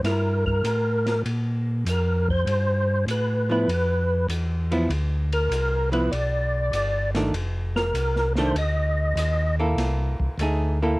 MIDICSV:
0, 0, Header, 1, 5, 480
1, 0, Start_track
1, 0, Tempo, 608519
1, 33, Time_signature, 4, 2, 24, 8
1, 8674, End_track
2, 0, Start_track
2, 0, Title_t, "Tonewheel organ"
2, 0, Program_c, 0, 16
2, 45, Note_on_c, 0, 70, 77
2, 355, Note_off_c, 0, 70, 0
2, 364, Note_on_c, 0, 70, 97
2, 962, Note_off_c, 0, 70, 0
2, 1492, Note_on_c, 0, 70, 73
2, 1802, Note_off_c, 0, 70, 0
2, 1817, Note_on_c, 0, 72, 102
2, 2407, Note_off_c, 0, 72, 0
2, 2452, Note_on_c, 0, 71, 68
2, 2762, Note_off_c, 0, 71, 0
2, 2775, Note_on_c, 0, 71, 95
2, 3366, Note_off_c, 0, 71, 0
2, 4205, Note_on_c, 0, 70, 99
2, 4651, Note_off_c, 0, 70, 0
2, 4679, Note_on_c, 0, 71, 93
2, 4822, Note_on_c, 0, 74, 85
2, 4825, Note_off_c, 0, 71, 0
2, 5604, Note_off_c, 0, 74, 0
2, 6124, Note_on_c, 0, 70, 97
2, 6570, Note_off_c, 0, 70, 0
2, 6614, Note_on_c, 0, 72, 91
2, 6753, Note_off_c, 0, 72, 0
2, 6767, Note_on_c, 0, 75, 81
2, 7537, Note_off_c, 0, 75, 0
2, 8674, End_track
3, 0, Start_track
3, 0, Title_t, "Hollow-body jazz guitar"
3, 0, Program_c, 1, 26
3, 38, Note_on_c, 1, 64, 63
3, 1384, Note_off_c, 1, 64, 0
3, 2757, Note_on_c, 1, 53, 65
3, 2769, Note_on_c, 1, 59, 69
3, 2773, Note_on_c, 1, 64, 72
3, 2894, Note_off_c, 1, 53, 0
3, 2900, Note_off_c, 1, 59, 0
3, 2902, Note_off_c, 1, 64, 0
3, 3719, Note_on_c, 1, 53, 69
3, 3726, Note_on_c, 1, 59, 72
3, 3729, Note_on_c, 1, 64, 75
3, 3854, Note_off_c, 1, 53, 0
3, 3858, Note_off_c, 1, 59, 0
3, 3860, Note_off_c, 1, 64, 0
3, 4669, Note_on_c, 1, 53, 70
3, 4673, Note_on_c, 1, 59, 68
3, 4678, Note_on_c, 1, 64, 76
3, 4809, Note_off_c, 1, 53, 0
3, 4811, Note_off_c, 1, 59, 0
3, 4814, Note_off_c, 1, 64, 0
3, 5642, Note_on_c, 1, 51, 69
3, 5648, Note_on_c, 1, 57, 64
3, 5650, Note_on_c, 1, 62, 70
3, 5776, Note_off_c, 1, 51, 0
3, 5779, Note_off_c, 1, 57, 0
3, 5780, Note_off_c, 1, 62, 0
3, 6606, Note_on_c, 1, 51, 77
3, 6612, Note_on_c, 1, 57, 89
3, 6614, Note_on_c, 1, 62, 86
3, 6738, Note_off_c, 1, 51, 0
3, 6741, Note_off_c, 1, 57, 0
3, 6742, Note_off_c, 1, 62, 0
3, 7568, Note_on_c, 1, 58, 64
3, 7574, Note_on_c, 1, 64, 64
3, 7574, Note_on_c, 1, 69, 69
3, 8165, Note_off_c, 1, 58, 0
3, 8168, Note_off_c, 1, 64, 0
3, 8168, Note_off_c, 1, 69, 0
3, 8211, Note_on_c, 1, 57, 64
3, 8219, Note_on_c, 1, 63, 66
3, 8221, Note_on_c, 1, 68, 73
3, 8498, Note_off_c, 1, 57, 0
3, 8503, Note_off_c, 1, 63, 0
3, 8504, Note_off_c, 1, 68, 0
3, 8538, Note_on_c, 1, 58, 62
3, 8539, Note_on_c, 1, 64, 74
3, 8546, Note_on_c, 1, 69, 75
3, 8674, Note_off_c, 1, 58, 0
3, 8674, Note_off_c, 1, 64, 0
3, 8674, Note_off_c, 1, 69, 0
3, 8674, End_track
4, 0, Start_track
4, 0, Title_t, "Tonewheel organ"
4, 0, Program_c, 2, 16
4, 25, Note_on_c, 2, 43, 80
4, 494, Note_off_c, 2, 43, 0
4, 505, Note_on_c, 2, 45, 76
4, 974, Note_off_c, 2, 45, 0
4, 990, Note_on_c, 2, 46, 80
4, 1456, Note_off_c, 2, 46, 0
4, 1463, Note_on_c, 2, 41, 88
4, 1933, Note_off_c, 2, 41, 0
4, 1942, Note_on_c, 2, 43, 81
4, 2412, Note_off_c, 2, 43, 0
4, 2419, Note_on_c, 2, 45, 79
4, 2890, Note_off_c, 2, 45, 0
4, 2901, Note_on_c, 2, 41, 84
4, 3371, Note_off_c, 2, 41, 0
4, 3380, Note_on_c, 2, 40, 88
4, 3851, Note_off_c, 2, 40, 0
4, 3857, Note_on_c, 2, 38, 84
4, 4329, Note_off_c, 2, 38, 0
4, 4335, Note_on_c, 2, 36, 80
4, 4808, Note_off_c, 2, 36, 0
4, 4825, Note_on_c, 2, 35, 80
4, 5293, Note_off_c, 2, 35, 0
4, 5301, Note_on_c, 2, 31, 92
4, 5771, Note_off_c, 2, 31, 0
4, 5778, Note_on_c, 2, 29, 85
4, 6249, Note_off_c, 2, 29, 0
4, 6262, Note_on_c, 2, 36, 85
4, 6731, Note_off_c, 2, 36, 0
4, 6740, Note_on_c, 2, 38, 83
4, 7210, Note_off_c, 2, 38, 0
4, 7224, Note_on_c, 2, 39, 90
4, 7693, Note_off_c, 2, 39, 0
4, 7703, Note_on_c, 2, 36, 90
4, 8014, Note_off_c, 2, 36, 0
4, 8043, Note_on_c, 2, 36, 36
4, 8117, Note_off_c, 2, 36, 0
4, 8184, Note_on_c, 2, 38, 84
4, 8654, Note_off_c, 2, 38, 0
4, 8674, End_track
5, 0, Start_track
5, 0, Title_t, "Drums"
5, 34, Note_on_c, 9, 38, 34
5, 36, Note_on_c, 9, 51, 57
5, 113, Note_off_c, 9, 38, 0
5, 115, Note_off_c, 9, 51, 0
5, 361, Note_on_c, 9, 36, 56
5, 440, Note_off_c, 9, 36, 0
5, 510, Note_on_c, 9, 44, 53
5, 510, Note_on_c, 9, 51, 59
5, 589, Note_off_c, 9, 44, 0
5, 589, Note_off_c, 9, 51, 0
5, 839, Note_on_c, 9, 38, 38
5, 841, Note_on_c, 9, 51, 44
5, 918, Note_off_c, 9, 38, 0
5, 920, Note_off_c, 9, 51, 0
5, 991, Note_on_c, 9, 51, 59
5, 1070, Note_off_c, 9, 51, 0
5, 1470, Note_on_c, 9, 44, 60
5, 1470, Note_on_c, 9, 51, 62
5, 1549, Note_off_c, 9, 44, 0
5, 1549, Note_off_c, 9, 51, 0
5, 1801, Note_on_c, 9, 36, 61
5, 1880, Note_off_c, 9, 36, 0
5, 1950, Note_on_c, 9, 51, 55
5, 2029, Note_off_c, 9, 51, 0
5, 2431, Note_on_c, 9, 44, 52
5, 2431, Note_on_c, 9, 51, 59
5, 2510, Note_off_c, 9, 44, 0
5, 2510, Note_off_c, 9, 51, 0
5, 2913, Note_on_c, 9, 51, 63
5, 2992, Note_off_c, 9, 51, 0
5, 3388, Note_on_c, 9, 44, 52
5, 3388, Note_on_c, 9, 51, 69
5, 3467, Note_off_c, 9, 44, 0
5, 3467, Note_off_c, 9, 51, 0
5, 3720, Note_on_c, 9, 51, 45
5, 3799, Note_off_c, 9, 51, 0
5, 3867, Note_on_c, 9, 51, 55
5, 3946, Note_off_c, 9, 51, 0
5, 4200, Note_on_c, 9, 51, 49
5, 4278, Note_off_c, 9, 51, 0
5, 4351, Note_on_c, 9, 44, 54
5, 4351, Note_on_c, 9, 51, 66
5, 4430, Note_off_c, 9, 44, 0
5, 4430, Note_off_c, 9, 51, 0
5, 4676, Note_on_c, 9, 51, 39
5, 4755, Note_off_c, 9, 51, 0
5, 4831, Note_on_c, 9, 51, 62
5, 4910, Note_off_c, 9, 51, 0
5, 5310, Note_on_c, 9, 44, 52
5, 5310, Note_on_c, 9, 51, 69
5, 5389, Note_off_c, 9, 44, 0
5, 5389, Note_off_c, 9, 51, 0
5, 5636, Note_on_c, 9, 38, 52
5, 5637, Note_on_c, 9, 51, 46
5, 5715, Note_off_c, 9, 38, 0
5, 5716, Note_off_c, 9, 51, 0
5, 5790, Note_on_c, 9, 51, 59
5, 5869, Note_off_c, 9, 51, 0
5, 6120, Note_on_c, 9, 38, 44
5, 6199, Note_off_c, 9, 38, 0
5, 6269, Note_on_c, 9, 44, 52
5, 6269, Note_on_c, 9, 51, 64
5, 6348, Note_off_c, 9, 44, 0
5, 6348, Note_off_c, 9, 51, 0
5, 6436, Note_on_c, 9, 38, 26
5, 6515, Note_off_c, 9, 38, 0
5, 6590, Note_on_c, 9, 38, 41
5, 6669, Note_off_c, 9, 38, 0
5, 6751, Note_on_c, 9, 51, 62
5, 6830, Note_off_c, 9, 51, 0
5, 7234, Note_on_c, 9, 44, 62
5, 7234, Note_on_c, 9, 51, 71
5, 7313, Note_off_c, 9, 44, 0
5, 7313, Note_off_c, 9, 51, 0
5, 7714, Note_on_c, 9, 38, 34
5, 7716, Note_on_c, 9, 51, 63
5, 7793, Note_off_c, 9, 38, 0
5, 7795, Note_off_c, 9, 51, 0
5, 8046, Note_on_c, 9, 36, 57
5, 8124, Note_off_c, 9, 36, 0
5, 8197, Note_on_c, 9, 44, 43
5, 8197, Note_on_c, 9, 51, 60
5, 8276, Note_off_c, 9, 44, 0
5, 8276, Note_off_c, 9, 51, 0
5, 8674, End_track
0, 0, End_of_file